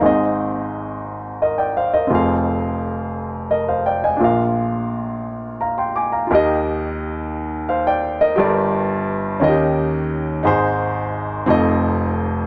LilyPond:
\new Staff \with { instrumentName = "Grand piano" } { \time 6/8 \key ees \major \tempo 4. = 58 << { <f'' bes''>16 r4. r16 <bes' ees''>16 <d'' g''>16 <c'' f''>16 <bes' ees''>16~ | <bes' ees''>16 r4. r16 <bes' ees''>16 <c'' f''>16 <d'' g''>16 <ees'' aes''>16~ | <ees'' aes''>16 r4. r16 <f'' bes''>16 <g'' c'''>16 <aes'' d'''>16 <f'' bes''>16~ | <f'' bes''>16 r4. r16 <c'' f''>16 <d'' g''>8 <bes' ees''>16~ |
<bes' ees''>16 r2 r8. | r2. | } \\ { <aes,, aes, c' ees' aes' ees''>2. | <f,, f, c' f' aes' f''>2. | <bes,, bes, d' f' bes' f''>2. | <ees, ees f' g' bes' ees''>2. |
<g,, g, g' a' bes' d''>4. <ees, ees des' ees' f' g' bes' ees''>4. | <aes,, aes, ees' aes' c''>4. <f,, f, c' ees' f' a' ees''>4. | } >> }